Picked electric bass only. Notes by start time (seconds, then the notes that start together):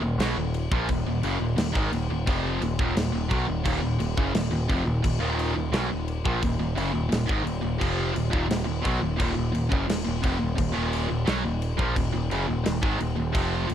0.01 D#1
0.18 B1
0.35 D#1
0.72 A#1
0.89 D#1
1.05 D#1
1.23 F#1
1.40 D#1
1.57 D#1
1.76 G#1
1.93 D#1
2.10 D#1
2.28 F1
2.61 D#1
2.79 D#1
2.96 D#1
3.14 D#1
3.31 B1
3.48 D#1
3.66 D#1
3.82 D#1
4.00 D#1
4.18 F#1
4.35 D#1
4.51 D#1
4.69 F1
4.86 D#1
5.04 D#1
5.21 D#1
5.56 D#1
5.73 B1
5.90 D#1
6.26 A#1
6.43 D#1
6.59 D#1
6.76 F#1
6.94 D#1
7.11 D#1
7.29 G#1
7.45 D#1
7.63 D#1
7.82 F1
8.16 D#1
8.33 D#1
8.50 D#1
8.67 D#1
8.85 B1
9.02 D#1
9.20 D#1
9.38 D#1
9.54 D#1
9.72 F#1
9.89 D#1
10.07 D#1
10.24 F1
10.42 D#1
10.58 D#1
10.76 D#1
11.10 D#1
11.28 B1
11.45 D#1
11.79 A#1
11.96 D#1
12.14 D#1
12.31 F#1
12.49 D#1
12.66 D#1
12.83 G#1
13.01 D#1
13.18 D#1
13.35 F1
13.70 D#1